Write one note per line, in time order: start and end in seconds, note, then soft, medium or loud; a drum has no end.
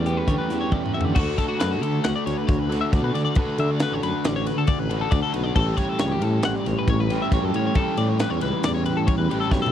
0.00 0.21 E2 medium
0.00 0.69 E2 medium
0.00 0.25 E3 medium
0.00 0.27 G3 medium
0.06 0.27 A3 medium
0.06 0.93 B3 medium
0.06 0.28 C#4 medium
0.06 0.17 G4 medium
0.06 0.29 G4 medium
0.06 closed hi-hat medium
0.17 0.28 B4 medium
0.26 0.37 D3 medium
0.26 0.72 E3 medium
0.26 1.17 G3 medium
0.26 0.51 A3 medium
0.26 0.50 C#4 medium
0.26 0.38 C#5 medium
0.26 kick loud
0.26 closed hi-hat medium
0.30 0.48 G4 medium
0.38 0.60 B4 medium
0.49 0.67 E2 medium
0.49 0.72 A3 medium
0.49 0.74 C#4 medium
0.49 0.72 D4 medium
0.49 0.74 G4 medium
0.49 snare soft
0.49 closed hi-hat medium
0.61 0.72 C#5 medium
0.70 1.13 E2 medium
0.70 1.15 E3 medium
0.70 0.96 A3 medium
0.70 0.84 D5 medium
0.70 kick loud
0.75 0.95 C#4 medium
0.75 0.93 G4 medium
0.84 0.94 B4 medium
0.84 mid tom medium
0.94 1.15 A3 medium
0.94 1.14 B3 medium
0.94 1.16 C#4 medium
0.94 1.15 G4 medium
0.94 1.05 E5 medium
1.01 1.13 D3 medium
1.01 floor tom medium
1.05 1.16 D5 medium
1.15 1.34 D2 loud
1.15 2.69 D3 medium
1.15 2.71 A3 medium
1.15 2.69 D4 medium
1.15 1.38 F#4 medium
1.15 2.70 F#4 loud
1.15 kick loud
1.15 crash loud
1.19 2.69 A4 loud
1.38 1.48 A4 medium
1.38 kick medium
1.38 snare soft
1.38 ride medium
1.48 1.60 F#4 medium
1.60 1.84 F#2 medium
1.60 1.71 B4 medium
1.60 snare loud
1.60 ride loud
1.71 1.82 F#4 medium
1.82 2.00 D3 medium
1.82 2.04 A4 medium
1.82 ride medium
2.04 2.13 D2 medium
2.04 2.15 F#5 medium
2.04 snare loud
2.04 ride loud
2.16 2.26 D5 medium
2.26 2.35 D2 loud
2.26 2.37 C#5 medium
2.26 snare soft
2.26 ride medium
2.37 2.47 B4 medium
2.47 2.83 D2 loud
2.47 2.59 C#5 medium
2.47 kick loud
2.47 snare soft
2.47 ride loud
2.59 2.81 B4 medium
2.69 3.35 D3 medium
2.69 3.36 A3 medium
2.69 3.36 D4 medium
2.69 3.36 F#4 medium
2.69 3.39 A4 medium
2.69 snare soft
2.69 ride medium
2.81 2.92 E5 medium
2.92 3.02 D2 medium
2.92 3.03 D5 medium
2.92 kick loud
2.92 snare soft
2.92 ride loud
3.02 3.11 B2 medium
3.02 3.14 B4 medium
3.14 3.32 D3 medium
3.14 3.24 D5 medium
3.14 snare soft
3.14 ride medium
3.25 3.37 D5 medium
3.35 4.89 D3 medium
3.35 4.91 A3 loud
3.35 4.89 D4 loud
3.35 4.88 F#4 loud
3.35 4.89 A4 loud
3.35 3.59 B4 medium
3.35 kick loud
3.35 ride loud
3.58 3.84 D3 loud
3.58 3.71 E5 medium
3.58 ride medium
3.71 3.81 D5 medium
3.80 3.93 B4 medium
3.80 snare loud
3.80 ride loud
3.92 4.00 A1 medium
3.92 4.03 C#5 medium
4.03 4.11 F#2 medium
4.03 4.25 B4 medium
4.03 ride medium
4.24 4.50 A1 medium
4.24 4.36 D5 medium
4.24 snare loud
4.24 ride loud
4.36 4.47 C#5 medium
4.47 4.58 B4 medium
4.47 snare soft
4.47 ride medium
4.56 4.65 D3 medium
4.56 4.69 A4 medium
4.67 4.79 D5 medium
4.67 kick loud
4.67 ride loud
4.78 5.04 A1 medium
4.78 5.01 B4 medium
4.89 5.56 D3 medium
4.89 5.56 A3 medium
4.89 5.55 D4 medium
4.89 5.55 F#4 loud
4.89 5.60 A4 loud
4.89 ride medium
5.01 5.12 A4 medium
5.11 5.21 D2 loud
5.11 5.22 D5 medium
5.11 kick loud
5.11 snare soft
5.11 ride loud
5.22 5.33 A4 medium
5.33 5.51 B1 medium
5.33 5.44 B4 medium
5.33 ride medium
5.44 5.55 D5 medium
5.54 5.73 A1 loud
5.54 7.08 A2 medium
5.54 7.12 E3 loud
5.54 7.09 G3 loud
5.54 7.09 C#4 loud
5.54 7.09 G4 loud
5.54 5.77 A4 medium
5.54 kick loud
5.54 crash loud
5.77 5.89 C#5 medium
5.77 kick medium
5.77 snare soft
5.77 ride medium
5.89 6.00 A4 medium
5.99 6.23 C#2 medium
5.99 6.11 C#5 medium
5.99 snare loud
5.99 ride loud
6.12 6.22 G4 medium
6.22 6.39 A2 loud
6.22 6.44 A4 medium
6.22 ride medium
6.43 6.53 A1 medium
6.43 6.56 F#5 medium
6.43 snare loud
6.43 ride loud
6.56 6.67 D5 medium
6.66 6.75 A1 loud
6.66 6.77 C#5 medium
6.66 snare soft
6.66 ride medium
6.79 6.89 B4 medium
6.88 7.22 A1 loud
6.88 7.00 C#5 medium
6.88 kick loud
6.88 ride loud
7.00 7.22 B4 medium
7.10 7.74 A2 medium
7.10 7.76 E3 medium
7.10 7.75 G3 medium
7.10 7.75 C#4 medium
7.10 7.75 G4 medium
7.10 snare soft
7.10 ride medium
7.22 7.33 E5 medium
7.32 7.40 A1 loud
7.32 7.45 C#5 medium
7.32 kick loud
7.32 snare soft
7.32 ride loud
7.42 7.51 F#2 loud
7.42 7.55 A4 medium
7.54 7.71 A2 medium
7.54 7.66 C#5 medium
7.54 ride medium
7.67 7.77 C#5 medium
7.75 9.28 A2 medium
7.75 9.28 E3 medium
7.75 9.29 G3 loud
7.75 9.29 C#4 loud
7.75 9.28 G4 loud
7.75 7.98 A4 medium
7.75 kick loud
7.75 ride loud
7.97 8.23 A2 loud
7.97 8.09 D5 medium
7.97 ride medium
8.09 8.20 C#5 medium
8.19 8.30 B4 medium
8.19 snare loud
8.19 ride loud
8.30 8.39 E2 medium
8.30 8.41 C#5 medium
8.41 8.51 C#2 medium
8.41 8.64 B4 medium
8.41 snare soft
8.41 ride medium
8.63 8.89 E2 medium
8.63 8.74 D5 medium
8.63 snare loud
8.63 ride loud
8.74 8.85 C#5 medium
8.86 8.97 B4 medium
8.86 ride medium
8.97 9.06 A2 medium
8.97 9.08 A4 medium
9.07 9.17 C#5 medium
9.07 kick loud
9.07 ride loud
9.18 9.27 E2 medium
9.18 9.40 B4 medium
9.29 9.50 A1 medium
9.29 9.72 E3 medium
9.29 9.72 G3 medium
9.29 9.72 C#4 medium
9.29 9.72 G4 medium
9.29 ride medium
9.33 9.72 A2 medium
9.40 9.51 A4 medium
9.51 9.72 B1 medium
9.51 9.61 C#5 medium
9.51 kick loud
9.51 snare medium
9.62 9.72 A4 medium
9.66 mid tom medium